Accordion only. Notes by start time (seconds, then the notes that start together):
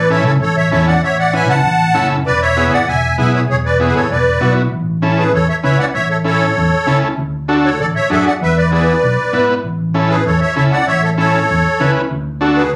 0.10 C#5 E5
0.25 A4 C#5
0.41 A4 C#5
0.57 C#5 E5
0.71 C#5 E5
0.87 D5 F#5
1.03 C#5 E5
1.19 D5 F#5
1.34 E5 G#5
1.49 F#5 A5
2.26 B4 D5
2.41 C#5 E5
2.73 D5 F#5
2.88 E5 G#5
3.18 E5 G#5
3.34 C#5 E5
3.50 G#4 C#5
3.65 B4 D5
3.80 G#4 B4 C#5
3.87 G#4 B4
3.95 A4 C#5
4.11 B4 D5
5.18 G#4 B4
5.34 A4 C#5
5.49 C#5 E5
5.64 C#5 E5
5.79 D5 F#5
5.94 C#5 E5
6.10 A4 C#5
6.25 A4 C#5
7.64 A4 C#5
7.80 A4 D5
7.95 C#5 E5
8.11 A4 E5
8.27 D5 F#5
8.42 B4 E5
8.57 B4 D5
8.72 B4 D5
10.09 G#4 B4
10.26 A4 C#5
10.41 C#5 E5
10.56 C#5 E5
10.72 D5 F#5
10.87 C#5 E5
11.03 A4 C#5
11.18 A4 C#5
12.57 G#4 B4